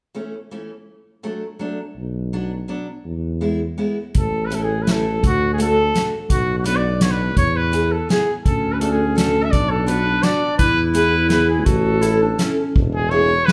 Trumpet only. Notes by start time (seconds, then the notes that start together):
4.18 A4
4.46 B4
4.54 A4
4.64 G#4
4.82 B4
4.91 A4
5.26 F#4
5.53 G#4
5.62 A4
6.31 F#4
6.59 F#4
6.66 B4
6.76 D5
7.02 C#5
7.11 B4
7.37 C#5
7.57 B4
7.92 A4
8.10 G#4
8.45 A4
8.73 B4
8.80 A4
8.91 G#4
9.17 A4
9.44 E5
9.51 D5
9.71 A4
9.88 B4
10.23 D5
10.58 B4
10.94 B4
11.30 B4
11.50 G#4
11.66 A4
12.95 G#4
13.11 C#5
13.46 B4